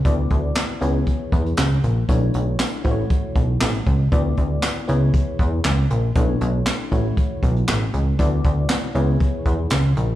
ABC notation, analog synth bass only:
X:1
M:4/4
L:1/8
Q:1/4=118
K:C#phr
V:1 name="Analog synth bass" clef=bass
D,, D,, z C,, z E,, C,, ^A,,, | B,,, B,,, z A,,, z B,,, A,,, C,, | D,, D,, z C,, z E,, C,, ^A,,, | B,,, B,,, z A,,, z B,,, A,,, C,, |
D,, D,, z C,, z E,, C,, ^A,,, |]